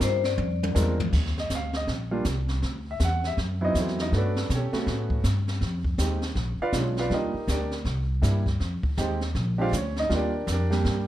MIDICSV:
0, 0, Header, 1, 6, 480
1, 0, Start_track
1, 0, Tempo, 373832
1, 1450, Time_signature, 4, 2, 24, 8
1, 14214, End_track
2, 0, Start_track
2, 0, Title_t, "Vibraphone"
2, 0, Program_c, 0, 11
2, 43, Note_on_c, 0, 72, 82
2, 326, Note_on_c, 0, 74, 80
2, 338, Note_off_c, 0, 72, 0
2, 931, Note_off_c, 0, 74, 0
2, 14214, End_track
3, 0, Start_track
3, 0, Title_t, "Upright piano"
3, 0, Program_c, 1, 0
3, 0, Note_on_c, 1, 55, 60
3, 0, Note_on_c, 1, 62, 60
3, 0, Note_on_c, 1, 63, 55
3, 0, Note_on_c, 1, 65, 58
3, 0, Note_on_c, 1, 70, 66
3, 246, Note_off_c, 1, 55, 0
3, 246, Note_off_c, 1, 63, 0
3, 248, Note_off_c, 1, 65, 0
3, 249, Note_off_c, 1, 62, 0
3, 250, Note_off_c, 1, 70, 0
3, 960, Note_on_c, 1, 56, 73
3, 960, Note_on_c, 1, 60, 66
3, 960, Note_on_c, 1, 62, 68
3, 961, Note_on_c, 1, 70, 79
3, 963, Note_on_c, 1, 65, 67
3, 1238, Note_off_c, 1, 56, 0
3, 1238, Note_off_c, 1, 60, 0
3, 1238, Note_off_c, 1, 62, 0
3, 1238, Note_off_c, 1, 70, 0
3, 1239, Note_off_c, 1, 65, 0
3, 1792, Note_on_c, 1, 75, 75
3, 1945, Note_off_c, 1, 75, 0
3, 1994, Note_on_c, 1, 77, 79
3, 2256, Note_off_c, 1, 77, 0
3, 2265, Note_on_c, 1, 75, 80
3, 2421, Note_off_c, 1, 75, 0
3, 2713, Note_on_c, 1, 55, 74
3, 2713, Note_on_c, 1, 58, 64
3, 2716, Note_on_c, 1, 65, 79
3, 2721, Note_on_c, 1, 62, 67
3, 2872, Note_off_c, 1, 55, 0
3, 2872, Note_off_c, 1, 58, 0
3, 2873, Note_off_c, 1, 65, 0
3, 2876, Note_off_c, 1, 62, 0
3, 3734, Note_on_c, 1, 76, 70
3, 3875, Note_off_c, 1, 76, 0
3, 3910, Note_on_c, 1, 78, 87
3, 4174, Note_off_c, 1, 78, 0
3, 4195, Note_on_c, 1, 76, 82
3, 4288, Note_off_c, 1, 76, 0
3, 4635, Note_on_c, 1, 54, 71
3, 4637, Note_on_c, 1, 59, 67
3, 4638, Note_on_c, 1, 64, 82
3, 4641, Note_on_c, 1, 60, 66
3, 4681, Note_on_c, 1, 75, 89
3, 4685, Note_on_c, 1, 63, 74
3, 4829, Note_off_c, 1, 75, 0
3, 4831, Note_off_c, 1, 63, 0
3, 4860, Note_off_c, 1, 60, 0
3, 4873, Note_on_c, 1, 72, 49
3, 4879, Note_on_c, 1, 60, 40
3, 4880, Note_on_c, 1, 66, 40
3, 4885, Note_on_c, 1, 69, 39
3, 5135, Note_off_c, 1, 72, 0
3, 5138, Note_off_c, 1, 60, 0
3, 5139, Note_off_c, 1, 66, 0
3, 5142, Note_off_c, 1, 69, 0
3, 5157, Note_on_c, 1, 75, 87
3, 5159, Note_on_c, 1, 63, 69
3, 5255, Note_off_c, 1, 54, 0
3, 5256, Note_off_c, 1, 59, 0
3, 5256, Note_off_c, 1, 64, 0
3, 5298, Note_on_c, 1, 57, 58
3, 5298, Note_on_c, 1, 59, 56
3, 5304, Note_on_c, 1, 66, 68
3, 5305, Note_on_c, 1, 61, 56
3, 5307, Note_off_c, 1, 75, 0
3, 5308, Note_off_c, 1, 63, 0
3, 5355, Note_on_c, 1, 71, 60
3, 5355, Note_on_c, 1, 74, 74
3, 5359, Note_on_c, 1, 69, 59
3, 5364, Note_on_c, 1, 62, 57
3, 5566, Note_off_c, 1, 57, 0
3, 5566, Note_off_c, 1, 59, 0
3, 5569, Note_off_c, 1, 61, 0
3, 5569, Note_off_c, 1, 66, 0
3, 5770, Note_off_c, 1, 71, 0
3, 5771, Note_off_c, 1, 74, 0
3, 5772, Note_off_c, 1, 69, 0
3, 5775, Note_off_c, 1, 62, 0
3, 5837, Note_on_c, 1, 73, 74
3, 5839, Note_on_c, 1, 61, 61
3, 5843, Note_on_c, 1, 67, 59
3, 5844, Note_on_c, 1, 69, 58
3, 6058, Note_off_c, 1, 61, 0
3, 6069, Note_on_c, 1, 57, 73
3, 6073, Note_on_c, 1, 66, 79
3, 6076, Note_on_c, 1, 59, 64
3, 6077, Note_on_c, 1, 61, 63
3, 6097, Note_off_c, 1, 73, 0
3, 6100, Note_off_c, 1, 67, 0
3, 6101, Note_off_c, 1, 69, 0
3, 6692, Note_off_c, 1, 57, 0
3, 6694, Note_off_c, 1, 66, 0
3, 6695, Note_off_c, 1, 59, 0
3, 6696, Note_off_c, 1, 61, 0
3, 7683, Note_on_c, 1, 56, 58
3, 7683, Note_on_c, 1, 60, 50
3, 7687, Note_on_c, 1, 67, 64
3, 7691, Note_on_c, 1, 63, 54
3, 7958, Note_off_c, 1, 56, 0
3, 7958, Note_off_c, 1, 60, 0
3, 7960, Note_off_c, 1, 67, 0
3, 7962, Note_off_c, 1, 63, 0
3, 8500, Note_on_c, 1, 77, 94
3, 8503, Note_on_c, 1, 74, 80
3, 8505, Note_on_c, 1, 65, 76
3, 8505, Note_on_c, 1, 71, 75
3, 8621, Note_off_c, 1, 65, 0
3, 8636, Note_on_c, 1, 56, 58
3, 8637, Note_on_c, 1, 59, 52
3, 8640, Note_on_c, 1, 65, 65
3, 8642, Note_on_c, 1, 62, 52
3, 8658, Note_off_c, 1, 77, 0
3, 8659, Note_off_c, 1, 74, 0
3, 8660, Note_off_c, 1, 71, 0
3, 8696, Note_on_c, 1, 73, 54
3, 8697, Note_on_c, 1, 61, 40
3, 8915, Note_off_c, 1, 56, 0
3, 8915, Note_off_c, 1, 59, 0
3, 8916, Note_off_c, 1, 65, 0
3, 8918, Note_off_c, 1, 62, 0
3, 8967, Note_off_c, 1, 61, 0
3, 8967, Note_off_c, 1, 73, 0
3, 8980, Note_on_c, 1, 77, 84
3, 8982, Note_on_c, 1, 65, 71
3, 8983, Note_on_c, 1, 71, 67
3, 8983, Note_on_c, 1, 74, 72
3, 9099, Note_off_c, 1, 65, 0
3, 9113, Note_on_c, 1, 55, 57
3, 9113, Note_on_c, 1, 58, 56
3, 9118, Note_on_c, 1, 62, 56
3, 9118, Note_on_c, 1, 65, 67
3, 9138, Note_off_c, 1, 77, 0
3, 9139, Note_off_c, 1, 71, 0
3, 9139, Note_off_c, 1, 74, 0
3, 9163, Note_on_c, 1, 63, 58
3, 9163, Note_on_c, 1, 67, 59
3, 9166, Note_on_c, 1, 75, 74
3, 9169, Note_on_c, 1, 70, 60
3, 9393, Note_off_c, 1, 55, 0
3, 9393, Note_off_c, 1, 58, 0
3, 9395, Note_off_c, 1, 65, 0
3, 9396, Note_off_c, 1, 62, 0
3, 9593, Note_off_c, 1, 63, 0
3, 9593, Note_off_c, 1, 67, 0
3, 9595, Note_off_c, 1, 75, 0
3, 9596, Note_off_c, 1, 70, 0
3, 9642, Note_on_c, 1, 74, 72
3, 9644, Note_on_c, 1, 67, 58
3, 9647, Note_on_c, 1, 62, 55
3, 9649, Note_on_c, 1, 70, 59
3, 9919, Note_off_c, 1, 74, 0
3, 9920, Note_off_c, 1, 67, 0
3, 9922, Note_off_c, 1, 62, 0
3, 9923, Note_off_c, 1, 70, 0
3, 10549, Note_on_c, 1, 55, 59
3, 10551, Note_on_c, 1, 58, 54
3, 10555, Note_on_c, 1, 62, 53
3, 10556, Note_on_c, 1, 64, 64
3, 10831, Note_off_c, 1, 55, 0
3, 10832, Note_off_c, 1, 58, 0
3, 10834, Note_off_c, 1, 62, 0
3, 10835, Note_off_c, 1, 64, 0
3, 11526, Note_on_c, 1, 56, 66
3, 11530, Note_on_c, 1, 63, 61
3, 11531, Note_on_c, 1, 67, 75
3, 11534, Note_on_c, 1, 60, 63
3, 11800, Note_off_c, 1, 56, 0
3, 11802, Note_off_c, 1, 63, 0
3, 11803, Note_off_c, 1, 67, 0
3, 11804, Note_off_c, 1, 60, 0
3, 12304, Note_on_c, 1, 60, 69
3, 12304, Note_on_c, 1, 62, 71
3, 12307, Note_on_c, 1, 56, 73
3, 12310, Note_on_c, 1, 67, 85
3, 12346, Note_on_c, 1, 77, 97
3, 12348, Note_on_c, 1, 65, 74
3, 12348, Note_on_c, 1, 74, 78
3, 12349, Note_on_c, 1, 72, 74
3, 12468, Note_off_c, 1, 60, 0
3, 12468, Note_off_c, 1, 62, 0
3, 12469, Note_off_c, 1, 56, 0
3, 12471, Note_off_c, 1, 67, 0
3, 12502, Note_off_c, 1, 77, 0
3, 12503, Note_off_c, 1, 65, 0
3, 12503, Note_off_c, 1, 72, 0
3, 12503, Note_off_c, 1, 74, 0
3, 12542, Note_on_c, 1, 73, 77
3, 12547, Note_on_c, 1, 61, 61
3, 12810, Note_off_c, 1, 73, 0
3, 12813, Note_off_c, 1, 61, 0
3, 12831, Note_on_c, 1, 75, 91
3, 12834, Note_on_c, 1, 63, 73
3, 12959, Note_on_c, 1, 55, 62
3, 12960, Note_on_c, 1, 58, 60
3, 12964, Note_on_c, 1, 65, 69
3, 12965, Note_on_c, 1, 62, 63
3, 12984, Note_off_c, 1, 75, 0
3, 12986, Note_off_c, 1, 63, 0
3, 13015, Note_off_c, 1, 62, 0
3, 13031, Note_on_c, 1, 67, 62
3, 13031, Note_on_c, 1, 74, 76
3, 13033, Note_on_c, 1, 70, 63
3, 13034, Note_on_c, 1, 62, 60
3, 13238, Note_off_c, 1, 55, 0
3, 13238, Note_off_c, 1, 58, 0
3, 13240, Note_off_c, 1, 65, 0
3, 13450, Note_off_c, 1, 67, 0
3, 13450, Note_off_c, 1, 74, 0
3, 13451, Note_off_c, 1, 62, 0
3, 13451, Note_off_c, 1, 70, 0
3, 13507, Note_on_c, 1, 67, 59
3, 13509, Note_on_c, 1, 70, 60
3, 13510, Note_on_c, 1, 74, 78
3, 13514, Note_on_c, 1, 62, 65
3, 13724, Note_off_c, 1, 62, 0
3, 13728, Note_off_c, 1, 67, 0
3, 13743, Note_on_c, 1, 62, 65
3, 13746, Note_on_c, 1, 55, 72
3, 13747, Note_on_c, 1, 58, 66
3, 13748, Note_on_c, 1, 67, 80
3, 13775, Note_off_c, 1, 70, 0
3, 13776, Note_off_c, 1, 74, 0
3, 14214, Note_off_c, 1, 55, 0
3, 14214, Note_off_c, 1, 58, 0
3, 14214, Note_off_c, 1, 62, 0
3, 14214, Note_off_c, 1, 67, 0
3, 14214, End_track
4, 0, Start_track
4, 0, Title_t, "Upright bass"
4, 0, Program_c, 2, 32
4, 6, Note_on_c, 2, 43, 90
4, 474, Note_off_c, 2, 43, 0
4, 482, Note_on_c, 2, 41, 91
4, 952, Note_off_c, 2, 41, 0
4, 968, Note_on_c, 2, 40, 97
4, 1434, Note_off_c, 2, 40, 0
4, 1448, Note_on_c, 2, 39, 71
4, 1914, Note_off_c, 2, 39, 0
4, 1924, Note_on_c, 2, 38, 76
4, 2392, Note_off_c, 2, 38, 0
4, 2405, Note_on_c, 2, 34, 78
4, 2873, Note_off_c, 2, 34, 0
4, 2886, Note_on_c, 2, 36, 79
4, 3353, Note_off_c, 2, 36, 0
4, 3367, Note_on_c, 2, 38, 69
4, 3833, Note_off_c, 2, 38, 0
4, 3849, Note_on_c, 2, 40, 85
4, 4314, Note_off_c, 2, 40, 0
4, 4328, Note_on_c, 2, 42, 77
4, 4794, Note_off_c, 2, 42, 0
4, 4810, Note_on_c, 2, 40, 81
4, 5275, Note_off_c, 2, 40, 0
4, 5292, Note_on_c, 2, 43, 73
4, 5756, Note_off_c, 2, 43, 0
4, 5770, Note_on_c, 2, 47, 83
4, 6051, Note_off_c, 2, 47, 0
4, 6248, Note_on_c, 2, 45, 86
4, 6714, Note_off_c, 2, 45, 0
4, 6725, Note_on_c, 2, 43, 86
4, 7192, Note_off_c, 2, 43, 0
4, 7203, Note_on_c, 2, 41, 78
4, 7671, Note_off_c, 2, 41, 0
4, 7680, Note_on_c, 2, 39, 82
4, 8149, Note_off_c, 2, 39, 0
4, 8157, Note_on_c, 2, 34, 80
4, 8444, Note_off_c, 2, 34, 0
4, 8636, Note_on_c, 2, 35, 83
4, 9107, Note_off_c, 2, 35, 0
4, 9117, Note_on_c, 2, 39, 73
4, 9403, Note_off_c, 2, 39, 0
4, 9599, Note_on_c, 2, 38, 84
4, 10069, Note_off_c, 2, 38, 0
4, 10076, Note_on_c, 2, 36, 79
4, 10547, Note_off_c, 2, 36, 0
4, 10559, Note_on_c, 2, 43, 89
4, 11030, Note_off_c, 2, 43, 0
4, 11043, Note_on_c, 2, 41, 77
4, 11327, Note_off_c, 2, 41, 0
4, 11524, Note_on_c, 2, 39, 87
4, 11992, Note_off_c, 2, 39, 0
4, 12004, Note_on_c, 2, 34, 85
4, 12473, Note_off_c, 2, 34, 0
4, 12482, Note_on_c, 2, 38, 88
4, 12952, Note_off_c, 2, 38, 0
4, 12967, Note_on_c, 2, 39, 77
4, 13435, Note_off_c, 2, 39, 0
4, 13444, Note_on_c, 2, 41, 90
4, 13913, Note_off_c, 2, 41, 0
4, 13926, Note_on_c, 2, 43, 89
4, 14214, Note_off_c, 2, 43, 0
4, 14214, End_track
5, 0, Start_track
5, 0, Title_t, "Muted upright bass strokes"
5, 6071, Note_on_c, 9, 29, 39
5, 6199, Note_off_c, 9, 29, 0
5, 8463, Note_on_c, 9, 29, 38
5, 8592, Note_off_c, 9, 29, 0
5, 9419, Note_on_c, 9, 29, 38
5, 9548, Note_off_c, 9, 29, 0
5, 11339, Note_on_c, 9, 29, 39
5, 11467, Note_off_c, 9, 29, 0
5, 14214, End_track
6, 0, Start_track
6, 0, Title_t, "Drums"
6, 6, Note_on_c, 9, 36, 22
6, 8, Note_on_c, 9, 38, 72
6, 8, Note_on_c, 9, 44, 58
6, 134, Note_off_c, 9, 36, 0
6, 137, Note_off_c, 9, 38, 0
6, 137, Note_off_c, 9, 44, 0
6, 306, Note_on_c, 9, 38, 42
6, 435, Note_off_c, 9, 38, 0
6, 482, Note_on_c, 9, 48, 50
6, 610, Note_off_c, 9, 48, 0
6, 812, Note_on_c, 9, 48, 76
6, 941, Note_off_c, 9, 48, 0
6, 969, Note_on_c, 9, 38, 70
6, 969, Note_on_c, 9, 44, 66
6, 1097, Note_off_c, 9, 38, 0
6, 1097, Note_off_c, 9, 44, 0
6, 1282, Note_on_c, 9, 43, 92
6, 1411, Note_off_c, 9, 43, 0
6, 1448, Note_on_c, 9, 36, 63
6, 1450, Note_on_c, 9, 25, 40
6, 1450, Note_on_c, 9, 38, 38
6, 1450, Note_on_c, 9, 49, 64
6, 1576, Note_off_c, 9, 36, 0
6, 1578, Note_off_c, 9, 38, 0
6, 1578, Note_off_c, 9, 49, 0
6, 1612, Note_on_c, 9, 38, 27
6, 1740, Note_off_c, 9, 38, 0
6, 1768, Note_on_c, 9, 38, 38
6, 1896, Note_off_c, 9, 38, 0
6, 1924, Note_on_c, 9, 38, 54
6, 1924, Note_on_c, 9, 44, 47
6, 1926, Note_on_c, 9, 36, 22
6, 2052, Note_off_c, 9, 38, 0
6, 2052, Note_off_c, 9, 44, 0
6, 2054, Note_off_c, 9, 36, 0
6, 2223, Note_on_c, 9, 38, 45
6, 2351, Note_off_c, 9, 38, 0
6, 2407, Note_off_c, 9, 25, 0
6, 2407, Note_on_c, 9, 25, 38
6, 2407, Note_on_c, 9, 36, 22
6, 2407, Note_on_c, 9, 38, 41
6, 2536, Note_off_c, 9, 36, 0
6, 2536, Note_off_c, 9, 38, 0
6, 2884, Note_on_c, 9, 38, 56
6, 2884, Note_on_c, 9, 44, 59
6, 2887, Note_on_c, 9, 36, 23
6, 3012, Note_off_c, 9, 38, 0
6, 3012, Note_off_c, 9, 44, 0
6, 3016, Note_off_c, 9, 36, 0
6, 3188, Note_on_c, 9, 38, 47
6, 3317, Note_off_c, 9, 38, 0
6, 3367, Note_off_c, 9, 25, 0
6, 3367, Note_on_c, 9, 25, 45
6, 3367, Note_on_c, 9, 38, 41
6, 3368, Note_on_c, 9, 36, 18
6, 3495, Note_off_c, 9, 38, 0
6, 3497, Note_off_c, 9, 36, 0
6, 3850, Note_on_c, 9, 36, 18
6, 3850, Note_on_c, 9, 38, 55
6, 3850, Note_on_c, 9, 44, 53
6, 3978, Note_off_c, 9, 38, 0
6, 3978, Note_off_c, 9, 44, 0
6, 3979, Note_off_c, 9, 36, 0
6, 4157, Note_on_c, 9, 38, 36
6, 4286, Note_off_c, 9, 38, 0
6, 4331, Note_on_c, 9, 36, 23
6, 4333, Note_off_c, 9, 25, 0
6, 4333, Note_on_c, 9, 25, 45
6, 4333, Note_on_c, 9, 38, 42
6, 4459, Note_off_c, 9, 36, 0
6, 4462, Note_off_c, 9, 38, 0
6, 4811, Note_on_c, 9, 36, 23
6, 4814, Note_on_c, 9, 38, 59
6, 4814, Note_on_c, 9, 44, 53
6, 4939, Note_off_c, 9, 36, 0
6, 4943, Note_off_c, 9, 38, 0
6, 4943, Note_off_c, 9, 44, 0
6, 4975, Note_on_c, 9, 38, 27
6, 5104, Note_off_c, 9, 38, 0
6, 5117, Note_on_c, 9, 38, 36
6, 5134, Note_off_c, 9, 38, 0
6, 5134, Note_on_c, 9, 38, 37
6, 5262, Note_off_c, 9, 38, 0
6, 5293, Note_on_c, 9, 36, 22
6, 5294, Note_off_c, 9, 25, 0
6, 5294, Note_on_c, 9, 25, 49
6, 5294, Note_on_c, 9, 38, 39
6, 5421, Note_off_c, 9, 36, 0
6, 5422, Note_off_c, 9, 38, 0
6, 5602, Note_on_c, 9, 38, 49
6, 5731, Note_off_c, 9, 38, 0
6, 5772, Note_on_c, 9, 36, 21
6, 5777, Note_on_c, 9, 38, 59
6, 5777, Note_on_c, 9, 44, 61
6, 5900, Note_off_c, 9, 36, 0
6, 5905, Note_off_c, 9, 38, 0
6, 5905, Note_off_c, 9, 44, 0
6, 6072, Note_on_c, 9, 38, 38
6, 6201, Note_off_c, 9, 38, 0
6, 6249, Note_off_c, 9, 25, 0
6, 6249, Note_on_c, 9, 25, 39
6, 6249, Note_on_c, 9, 36, 16
6, 6249, Note_on_c, 9, 38, 40
6, 6377, Note_off_c, 9, 36, 0
6, 6378, Note_off_c, 9, 38, 0
6, 6550, Note_on_c, 9, 36, 52
6, 6679, Note_off_c, 9, 36, 0
6, 6726, Note_on_c, 9, 36, 25
6, 6728, Note_on_c, 9, 38, 65
6, 6728, Note_on_c, 9, 44, 60
6, 6855, Note_off_c, 9, 36, 0
6, 6856, Note_off_c, 9, 38, 0
6, 6856, Note_off_c, 9, 44, 0
6, 7031, Note_on_c, 9, 38, 37
6, 7159, Note_off_c, 9, 38, 0
6, 7204, Note_on_c, 9, 36, 20
6, 7206, Note_off_c, 9, 25, 0
6, 7206, Note_on_c, 9, 25, 40
6, 7206, Note_on_c, 9, 38, 42
6, 7332, Note_off_c, 9, 36, 0
6, 7335, Note_off_c, 9, 38, 0
6, 7504, Note_on_c, 9, 36, 48
6, 7633, Note_off_c, 9, 36, 0
6, 7680, Note_on_c, 9, 36, 17
6, 7682, Note_on_c, 9, 38, 59
6, 7682, Note_on_c, 9, 44, 53
6, 7808, Note_off_c, 9, 36, 0
6, 7810, Note_off_c, 9, 38, 0
6, 7810, Note_off_c, 9, 44, 0
6, 7982, Note_on_c, 9, 38, 38
6, 8110, Note_off_c, 9, 38, 0
6, 8157, Note_off_c, 9, 25, 0
6, 8157, Note_on_c, 9, 25, 45
6, 8157, Note_on_c, 9, 36, 22
6, 8157, Note_on_c, 9, 38, 42
6, 8285, Note_off_c, 9, 38, 0
6, 8286, Note_off_c, 9, 36, 0
6, 8636, Note_on_c, 9, 36, 21
6, 8638, Note_on_c, 9, 38, 61
6, 8638, Note_on_c, 9, 44, 56
6, 8765, Note_off_c, 9, 36, 0
6, 8766, Note_off_c, 9, 38, 0
6, 8766, Note_off_c, 9, 44, 0
6, 8944, Note_on_c, 9, 38, 36
6, 9072, Note_off_c, 9, 38, 0
6, 9117, Note_on_c, 9, 36, 24
6, 9122, Note_off_c, 9, 25, 0
6, 9122, Note_on_c, 9, 25, 43
6, 9122, Note_on_c, 9, 38, 44
6, 9246, Note_off_c, 9, 36, 0
6, 9250, Note_off_c, 9, 38, 0
6, 9597, Note_on_c, 9, 36, 20
6, 9603, Note_on_c, 9, 38, 61
6, 9603, Note_on_c, 9, 44, 60
6, 9725, Note_off_c, 9, 36, 0
6, 9731, Note_off_c, 9, 38, 0
6, 9731, Note_off_c, 9, 44, 0
6, 9903, Note_on_c, 9, 38, 36
6, 10031, Note_off_c, 9, 38, 0
6, 10078, Note_on_c, 9, 36, 21
6, 10080, Note_off_c, 9, 25, 0
6, 10080, Note_on_c, 9, 25, 44
6, 10080, Note_on_c, 9, 38, 42
6, 10206, Note_off_c, 9, 36, 0
6, 10208, Note_off_c, 9, 38, 0
6, 10560, Note_on_c, 9, 36, 26
6, 10567, Note_on_c, 9, 38, 65
6, 10567, Note_on_c, 9, 44, 56
6, 10688, Note_off_c, 9, 36, 0
6, 10696, Note_off_c, 9, 38, 0
6, 10696, Note_off_c, 9, 44, 0
6, 10864, Note_on_c, 9, 36, 45
6, 10870, Note_on_c, 9, 38, 38
6, 10992, Note_off_c, 9, 36, 0
6, 10998, Note_off_c, 9, 38, 0
6, 11041, Note_on_c, 9, 36, 22
6, 11044, Note_off_c, 9, 25, 0
6, 11044, Note_on_c, 9, 25, 51
6, 11044, Note_on_c, 9, 38, 44
6, 11169, Note_off_c, 9, 36, 0
6, 11172, Note_off_c, 9, 38, 0
6, 11343, Note_on_c, 9, 36, 55
6, 11471, Note_off_c, 9, 36, 0
6, 11522, Note_on_c, 9, 36, 23
6, 11522, Note_on_c, 9, 38, 63
6, 11522, Note_on_c, 9, 44, 53
6, 11650, Note_off_c, 9, 36, 0
6, 11650, Note_off_c, 9, 38, 0
6, 11650, Note_off_c, 9, 44, 0
6, 11825, Note_on_c, 9, 38, 42
6, 11954, Note_off_c, 9, 38, 0
6, 12002, Note_on_c, 9, 36, 20
6, 12004, Note_off_c, 9, 25, 0
6, 12004, Note_on_c, 9, 25, 51
6, 12004, Note_on_c, 9, 38, 42
6, 12130, Note_off_c, 9, 36, 0
6, 12132, Note_off_c, 9, 38, 0
6, 12486, Note_on_c, 9, 36, 20
6, 12490, Note_on_c, 9, 38, 63
6, 12490, Note_on_c, 9, 44, 61
6, 12614, Note_off_c, 9, 36, 0
6, 12618, Note_off_c, 9, 38, 0
6, 12618, Note_off_c, 9, 44, 0
6, 12791, Note_on_c, 9, 38, 39
6, 12919, Note_off_c, 9, 38, 0
6, 12967, Note_on_c, 9, 36, 19
6, 12971, Note_off_c, 9, 25, 0
6, 12971, Note_on_c, 9, 25, 53
6, 12971, Note_on_c, 9, 38, 44
6, 13095, Note_off_c, 9, 36, 0
6, 13099, Note_off_c, 9, 38, 0
6, 13447, Note_on_c, 9, 36, 22
6, 13448, Note_on_c, 9, 38, 65
6, 13448, Note_on_c, 9, 44, 61
6, 13576, Note_off_c, 9, 36, 0
6, 13576, Note_off_c, 9, 38, 0
6, 13576, Note_off_c, 9, 44, 0
6, 13757, Note_on_c, 9, 38, 38
6, 13885, Note_off_c, 9, 38, 0
6, 13928, Note_on_c, 9, 36, 20
6, 13930, Note_off_c, 9, 25, 0
6, 13930, Note_on_c, 9, 25, 49
6, 13930, Note_on_c, 9, 38, 45
6, 14056, Note_off_c, 9, 36, 0
6, 14058, Note_off_c, 9, 38, 0
6, 14214, Note_off_c, 9, 25, 0
6, 14214, End_track
0, 0, End_of_file